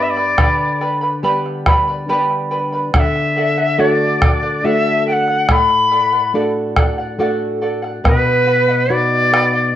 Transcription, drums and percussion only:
0.17 bombo rim soft
0.38 bombo rim medium
0.38 bombo low medium
0.81 bombo rim soft
1.04 bombo rim soft
1.24 bombo rim soft
1.46 bombo rim soft
1.66 bombo rim medium
1.66 bombo low medium
2.10 bombo rim soft
2.31 bombo rim soft
2.94 bombo rim medium
2.94 bombo low medium
3.16 bombo rim soft
3.36 bombo rim soft
4.22 bombo rim medium
4.22 bombo low medium
5.28 bombo rim soft
5.49 bombo rim medium
5.49 bombo low medium
5.70 bombo rim soft
5.92 bombo rim soft
6.77 bombo rim medium
6.77 bombo low medium
7.84 bombo rim soft
8.05 bombo rim medium
8.05 bombo low medium
8.27 bombo rim soft
8.48 bombo rim soft
9.34 bombo rim medium

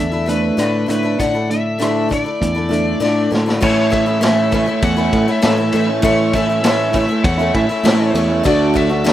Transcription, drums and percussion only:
0.29 closed hi-hat soft
0.59 cross-stick medium
0.59 closed hi-hat medium
0.90 closed hi-hat medium
1.20 kick medium
1.20 closed hi-hat medium
1.50 closed hi-hat medium
1.81 cross-stick loud
1.81 closed hi-hat medium
2.11 kick medium
2.11 closed hi-hat medium
2.42 kick medium
2.42 closed hi-hat medium
2.73 closed hi-hat medium
3.03 snare soft
3.33 snare medium
3.49 snare medium
3.62 kick loud
3.62 crash medium
3.93 kick medium
3.93 ride medium
4.23 snare loud
4.23 ride medium
4.52 kick medium
4.52 ride medium
4.82 kick loud
4.82 ride loud
5.13 kick medium
5.13 ride medium
5.42 snare medium
5.42 ride medium
5.72 ride medium
6.02 kick loud
6.02 ride medium
6.33 kick medium
6.33 ride medium
6.64 snare loud
6.64 ride loud
6.94 kick medium
6.94 ride medium
7.24 kick loud
7.24 ride medium
7.54 kick medium
7.54 ride medium
7.85 snare loud
7.85 ride medium
8.15 ride medium
8.45 kick loud
8.45 ride medium
8.76 kick medium
8.76 ride medium
9.06 snare loud
9.06 ride medium

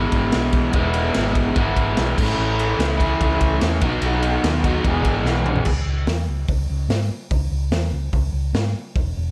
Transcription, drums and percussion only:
0.12 kick medium
0.12 ride medium
0.32 snare loud
0.32 ride loud
0.53 kick loud
0.53 ride medium
0.73 kick loud
0.73 ride loud
0.94 ride medium
1.14 snare loud
1.14 ride loud
1.35 kick medium
1.35 ride medium
1.56 kick loud
1.56 ride loud
1.76 kick medium
1.76 ride medium
1.97 snare loud
1.97 ride loud
2.18 kick loud
2.18 crash loud
2.59 ride medium
2.80 snare loud
2.80 ride loud
3.00 kick medium
3.00 ride medium
3.21 kick loud
3.21 ride loud
3.41 kick medium
3.41 ride medium
3.61 snare loud
3.61 ride loud
3.81 kick loud
3.81 ride medium
4.02 ride loud
4.22 ride medium
4.44 snare loud
4.44 ride loud
4.64 kick medium
4.64 ride medium
4.84 kick loud
4.84 ride loud
5.05 kick medium
5.05 ride medium
5.26 snare medium
5.46 mid tom loud
5.56 floor tom medium
5.65 kick loud
5.65 crash loud
6.07 snare loud
6.07 open hi-hat medium
6.48 kick loud
6.48 open hi-hat medium
6.90 snare loud
6.90 open hi-hat medium
7.31 kick loud
7.31 open hi-hat medium
7.72 snare loud
7.72 open hi-hat medium
8.13 kick loud
8.13 open hi-hat medium
8.54 snare loud
8.54 open hi-hat medium
8.96 kick loud
8.96 open hi-hat medium

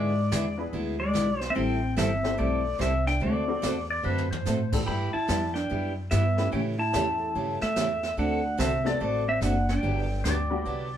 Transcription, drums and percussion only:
0.32 snare medium
0.32 hi-hat pedal medium
0.73 brush sweep soft
1.15 snare medium
1.15 hi-hat pedal medium
1.41 snare soft
1.56 brush sweep medium
1.98 snare medium
1.98 hi-hat pedal medium
2.24 snare soft
2.39 brush sweep soft
2.81 snare medium
2.81 hi-hat pedal medium
3.07 snare soft
3.22 brush sweep soft
3.63 snare medium
3.63 hi-hat pedal medium
4.18 floor tom medium
4.32 floor tom medium
4.46 snare medium
4.46 hi-hat pedal medium
4.72 kick medium
4.72 crash medium
4.87 brush sweep medium
5.29 snare medium
5.29 hi-hat pedal medium
5.55 snare soft
5.70 brush sweep soft
6.11 snare medium
6.11 hi-hat pedal medium
6.38 snare soft
6.52 brush sweep medium
6.94 snare medium
6.94 hi-hat pedal medium
7.35 brush sweep soft
7.61 snare soft
7.76 snare medium
7.76 hi-hat pedal medium
8.03 snare soft
8.18 brush sweep medium
8.59 snare medium
8.59 hi-hat pedal medium
8.86 snare soft
9.00 brush sweep soft
9.42 snare medium
9.42 hi-hat pedal medium
9.69 snare soft
9.84 brush sweep soft
10.25 snare medium
10.25 hi-hat pedal medium
10.66 brush sweep soft

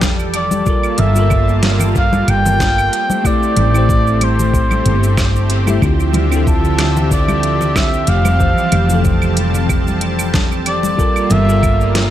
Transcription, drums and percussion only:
0.01 kick loud
0.01 snare medium
0.01 high conga medium
0.01 shaker medium
0.19 shaker soft
0.34 closed hi-hat medium
0.34 claves medium
0.51 high conga medium
0.51 shaker medium
0.66 kick loud
0.66 shaker medium
0.83 claves medium
0.83 shaker soft
0.98 closed hi-hat medium
0.98 high conga loud
0.98 low conga medium
1.16 shaker medium
1.30 kick loud
1.30 claves medium
1.30 shaker medium
1.49 shaker soft
1.62 snare medium
1.62 closed hi-hat medium
1.62 high conga medium
1.79 low conga medium
1.79 claves medium
1.79 shaker medium
1.95 kick loud
1.95 shaker medium
2.13 high conga loud
2.13 shaker soft
2.28 closed hi-hat medium
2.28 claves medium
2.45 low conga loud
2.45 shaker medium
2.60 kick loud
2.60 snare medium
2.60 high conga medium
2.60 shaker medium
2.78 claves medium
2.78 shaker soft
2.93 closed hi-hat medium
3.10 high conga loud
3.10 shaker medium
3.25 kick loud
3.25 claves medium
3.25 shaker medium
3.43 shaker soft
3.57 closed hi-hat medium
3.57 high conga medium
3.57 low conga medium
3.74 claves medium
3.74 shaker medium
3.89 kick loud
3.89 shaker medium
4.07 shaker soft
4.21 closed hi-hat medium
4.21 high conga medium
4.21 claves medium
4.39 low conga medium
4.39 shaker medium
4.54 kick loud
4.54 shaker medium
4.71 high conga medium
4.71 claves medium
4.71 shaker soft
4.86 closed hi-hat medium
5.04 shaker medium
5.17 kick loud
5.17 snare medium
5.17 high conga medium
5.17 claves medium
5.17 shaker medium
5.36 shaker soft
5.50 closed hi-hat medium
5.67 high conga loud
5.67 claves medium
5.67 shaker medium
5.82 kick loud
5.82 claves medium
5.82 shaker medium
6.00 shaker soft
6.13 closed hi-hat medium
6.13 high conga loud
6.13 low conga medium
6.32 claves medium
6.32 shaker medium
6.47 kick loud
6.47 shaker medium
6.65 shaker soft
6.78 snare medium
6.78 closed hi-hat medium
6.78 high conga medium
6.78 claves medium
6.97 low conga medium
6.97 shaker medium
7.11 kick loud
7.11 shaker medium
7.28 high conga medium
7.28 claves medium
7.28 shaker soft
7.43 closed hi-hat medium
7.61 low conga medium
7.61 shaker medium
7.76 kick loud
7.76 snare medium
7.76 high conga medium
7.76 claves medium
7.76 shaker medium
7.93 shaker soft
8.07 closed hi-hat medium
8.25 high conga loud
8.25 claves medium
8.25 shaker medium
8.40 kick loud
8.40 shaker medium
8.58 shaker soft
8.72 closed hi-hat medium
8.72 high conga medium
8.72 low conga medium
8.72 claves medium
8.90 shaker medium
9.05 kick loud
9.05 shaker soft
9.22 claves medium
9.22 shaker soft
9.37 closed hi-hat medium
9.37 high conga medium
9.55 low conga medium
9.55 shaker medium
9.69 kick loud
9.69 claves medium
9.69 shaker medium
9.88 high conga medium
9.88 shaker soft
10.01 closed hi-hat medium
10.19 claves medium
10.19 shaker medium
10.34 kick loud
10.34 snare medium
10.34 high conga medium
10.34 shaker medium
10.52 shaker soft
10.66 closed hi-hat medium
10.66 claves medium
10.83 high conga loud
10.83 shaker medium
10.99 kick loud
10.99 shaker soft
11.16 claves medium
11.16 shaker soft
11.30 closed hi-hat medium
11.30 high conga medium
11.30 low conga loud
11.49 shaker medium
11.63 kick loud
11.63 claves medium
11.63 shaker medium
11.81 shaker soft
11.95 snare medium
11.95 closed hi-hat loud
11.95 high conga medium

